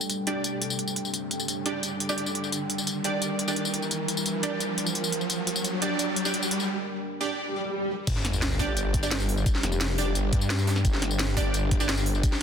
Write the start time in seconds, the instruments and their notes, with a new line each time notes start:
Already playing: ambient pad G3 D4 A4 G5, riser
0.01 tambourine
0.10 closed hi-hat, tambourine
0.27 synth stab D4 G4 D5, closed hi-hat
0.44 closed hi-hat, tambourine
0.62 closed hi-hat
0.70 tambourine
0.79 closed hi-hat
0.88 tambourine
0.96 closed hi-hat
1.05 tambourine
1.14 closed hi-hat, tambourine
1.31 closed hi-hat, tambourine
1.40 tambourine
1.48 closed hi-hat, tambourine
1.66 synth stab D4 G4 D5, closed hi-hat, tambourine
1.83 closed hi-hat, tambourine
2.00 closed hi-hat
2.09 synth stab D4 G4 D5, tambourine
2.18 closed hi-hat
2.26 tambourine
2.35 closed hi-hat
2.44 tambourine
2.52 ambient pad A#4, closed hi-hat, tambourine
2.70 closed hi-hat
2.78 tambourine
2.87 closed hi-hat, tambourine
3.04 synth stab D4 G4 D5, closed hi-hat
3.22 closed hi-hat, tambourine
3.39 closed hi-hat
3.48 synth stab D4 G4 D5, tambourine
3.56 closed hi-hat
3.65 tambourine
3.74 closed hi-hat
3.82 tambourine
3.91 closed hi-hat, tambourine
4.08 closed hi-hat, tambourine
4.17 tambourine
4.26 closed hi-hat, tambourine
4.43 synth stab D4 G4 D5, closed hi-hat, tambourine
4.60 closed hi-hat, tambourine
4.78 closed hi-hat
4.87 tambourine
4.95 closed hi-hat
5.04 tambourine
5.12 closed hi-hat
5.21 tambourine
5.30 closed hi-hat, tambourine
5.47 closed hi-hat
5.56 tambourine
5.64 closed hi-hat, tambourine
5.82 synth stab D4 G4 D5, closed hi-hat
5.99 closed hi-hat, tambourine
6.16 closed hi-hat
6.25 synth stab D4 G4 D5, tambourine
6.34 closed hi-hat
6.43 tambourine
6.51 closed hi-hat
6.60 tambourine
7.21 synth stab D4 G4 D5
7.38 swell
8.07 detuned saw bass G1, ambient pad G3 D4 G4, kick, closed hi-hat, crash, tambourine, sub drop
8.16 snare
8.25 snare, closed hi-hat
8.33 tambourine
8.42 snare, closed hi-hat, tambourine
8.59 synth stab D4 G4 D5, kick, snare, open hi-hat
8.77 closed hi-hat, tambourine
8.94 kick, closed hi-hat
9.03 synth stab D4 G4 D5, tambourine
9.11 snare, closed hi-hat
9.20 tambourine
9.29 open hi-hat
9.37 tambourine
9.46 kick, closed hi-hat, tambourine
9.55 snare
9.63 detuned saw bass F1, snare, closed hi-hat
9.72 tambourine
9.81 snare, closed hi-hat, tambourine
9.98 synth stab D4 G4 D5, open hi-hat
10.15 detuned saw bass G1, closed hi-hat, tambourine
10.33 detuned saw bass G2, kick, closed hi-hat
10.41 tambourine
10.50 snare, closed hi-hat
10.59 tambourine
10.67 snare, open hi-hat
10.76 snare, tambourine
10.85 detuned saw bass G1, kick, closed hi-hat, tambourine
10.93 snare
11.02 snare, closed hi-hat
11.11 tambourine
11.19 snare, closed hi-hat, tambourine
11.37 synth stab D4 G4 D5, kick, snare, open hi-hat
11.54 closed hi-hat, tambourine
11.71 kick, closed hi-hat
11.80 synth stab D4 G4 D5, tambourine
11.89 snare, closed hi-hat
11.97 tambourine
12.06 open hi-hat
12.15 tambourine
12.23 kick, closed hi-hat, tambourine
12.32 snare